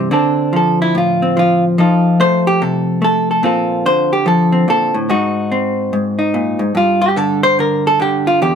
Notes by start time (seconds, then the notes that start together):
Already playing: C3 A3 D4
0.11 D3 C4 D4 A4
0.53 F3 A4
0.82 E4
0.95 A2 F4
1.22 C4
1.37 F3 F4
1.78 F3 D#4 F4 A4
2.20 A3 C5
2.47 G4
2.62 C3 A4
3.02 A3 A4
3.31 A4
3.43 A#2 C4 F4 A4
3.86 D3 C5
4.13 G4
4.26 F3 A4
4.52 C4
4.68 A#2 A4
4.94 A2
5.09 G#2 D#4 F#4
5.52 C4
5.93 G#2
6.19 D#4
6.34 A#2
6.59 G#2
6.75 G2 F4
7.02 G4
7.16 D3 A4
7.43 C5
7.59 D3 A#4
7.87 A4
8.00 D3 G4
8.27 F4
8.42 E2 G4